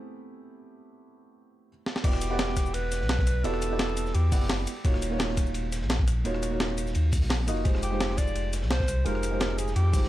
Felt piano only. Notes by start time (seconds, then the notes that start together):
Already playing: A3 B3 C4 E4 G4
2.03 B3 E4 F#4 G4 D5
2.29 B3 E4 G4 D5 F#5
3.43 B3 E4 F#4 G4 D5
3.69 B3 E4 F#4 G4 D5
4.31 B3 E4 G4 D5 F#5
4.84 A#3 D#4 F4 F#4 C#5
5.10 A#3 D#4 F4 F#4 C#5
6.24 A#3 D#4 F4 F#4 C#5
6.50 A#3 D#4 F4 F#4 C#5
7.47 A#3 D#4 F4 F#4 D#5
7.64 G#3 D#4 F4 G4 C5
7.90 G#3 D#4 F4 G4 C5
9.05 G#3 D#4 F4 G4 C5
9.31 G#3 D#4 F4 G4 C5
9.92 G#3 D#4 F4 G4 C5